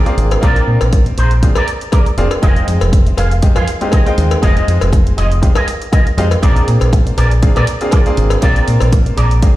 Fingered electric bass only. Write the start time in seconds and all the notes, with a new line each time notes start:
0.17 G#1
0.43 A#1
0.67 A#2
0.81 A#1
1.17 A#1
2.17 F1
2.43 F1
2.67 F2
2.81 F1
3.18 F1
3.56 F2
4.18 D#2
4.43 F1
4.68 F2
4.82 F1
5.18 F1
6.17 F2
6.43 A#1
6.68 A#2
6.81 A#1
7.17 A#1
7.56 A#2
8.17 G#1
8.43 A#1
8.68 A#2
8.81 A#1
9.17 A#1